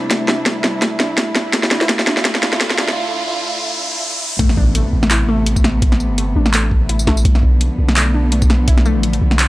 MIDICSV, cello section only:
0, 0, Header, 1, 2, 480
1, 0, Start_track
1, 0, Key_signature, 0, "minor"
1, 0, Tempo, 357143
1, 144, Time_signature, 4, 2, 24, 8
1, 12741, End_track
2, 0, Start_track
2, 0, Title_t, "Cello section"
2, 0, Program_c, 0, 48
2, 0, Note_on_c, 0, 48, 76
2, 0, Note_on_c, 0, 55, 70
2, 0, Note_on_c, 0, 62, 73
2, 0, Note_on_c, 0, 64, 88
2, 2023, Note_off_c, 0, 48, 0
2, 2023, Note_off_c, 0, 62, 0
2, 2026, Note_off_c, 0, 55, 0
2, 2063, Note_on_c, 0, 50, 84
2, 2063, Note_on_c, 0, 65, 90
2, 2064, Note_on_c, 0, 57, 77
2, 5849, Note_off_c, 0, 64, 0
2, 5865, Note_off_c, 0, 50, 0
2, 5865, Note_off_c, 0, 57, 0
2, 5865, Note_off_c, 0, 65, 0
2, 5904, Note_on_c, 0, 57, 75
2, 5906, Note_on_c, 0, 48, 84
2, 5906, Note_on_c, 0, 59, 89
2, 9705, Note_off_c, 0, 57, 0
2, 9706, Note_off_c, 0, 48, 0
2, 9706, Note_off_c, 0, 59, 0
2, 9740, Note_on_c, 0, 53, 75
2, 9740, Note_on_c, 0, 59, 94
2, 9743, Note_on_c, 0, 50, 84
2, 12741, Note_off_c, 0, 50, 0
2, 12741, Note_off_c, 0, 53, 0
2, 12741, Note_off_c, 0, 59, 0
2, 12741, End_track
0, 0, End_of_file